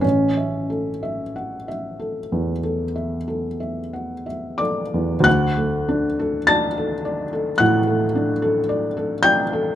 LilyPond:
\new Staff \with { instrumentName = "Felt piano" } { \time 4/4 \key d \major \tempo 4 = 48 << { cis'2.~ cis'8 <d'' d'''>8 | <fis'' fis'''>4 <a'' a'''>4 <fis'' fis'''>4. <g'' g'''>8 | } \\ { a,,16 e''16 a'16 e''16 fis''16 e''16 a'16 e,16 a'16 e''16 a'16 e''16 fis''16 e''16 a'16 e,16 | d,16 a16 d'16 a'16 d''16 a'16 d''16 a'16 a,16 a16 d'16 a'16 d''16 a'16 d''16 a'16 | } >> }